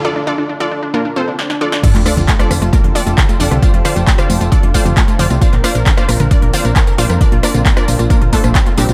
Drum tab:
CC |----------------|x---------------|----------------|----------------|
HH |----------------|xxoxxxoxxxoxxxox|xxoxxxoxxxoxxxox|xxoxxxoxxxoxxxox|
TB |----------------|x-xxxxxxx-xxxxxx|x-xxxxxxx-xxxxxx|x-xxxxxxx-xxxxxx|
CP |----------------|-x--x-------x---|----x-------x---|-x--x-------x---|
SD |------------oo-o|--r--rr--------r|--r--r----------|--r--rr--------r|
BD |----------------|o---o---o---o---|o---o---o-o-o---|o---o---o---o---|

CC |----------------|
HH |xxoxxxoxxxoxxxox|
TB |x-xxxxxxx-xxxxxx|
CP |----x-------x---|
SD |--r--r-----r----|
BD |o---o---o-o-o---|